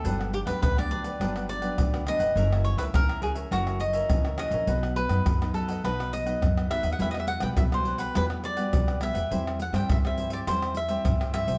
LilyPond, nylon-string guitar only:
\new Staff \with { instrumentName = "Nylon-string guitar" } { \time 4/4 \key e \minor \tempo 4 = 104 << { <fis b d'>8 r16 <fis b d'>8 <fis b d'>8. <fis b d'>8. <fis b d'>8. <fis b d'>16 r16 | <e ais cis'>16 <e ais cis'>8. <e ais cis'>8. r16 <e ais cis'>4 <e ais cis'>16 r16 <e ais cis'>8 | <fis b dis'>8. <fis b dis'>8 <fis b dis'>8. <fis b dis'>8. <fis b dis'>8. <fis b dis'>8 | <g b fis'>8. <g b fis'>8 <g b fis'>8. <g b fis'>8. <g b fis'>8. <g b fis'>16 r16 |
<g c' g'>8 r16 <g c' g'>8 <g c' g'>8. <g c' g'>8 r16 <g c' g'>8. <g c' g'>16 r16 | } \\ { g,4 d4 g,4 d4 | fis,4 cis4 fis,4 cis4 | b,4 fis,4 b,4 fis,4 | e4 b,4 e4 b,4 |
e4 e4 e4 e4 | } >> }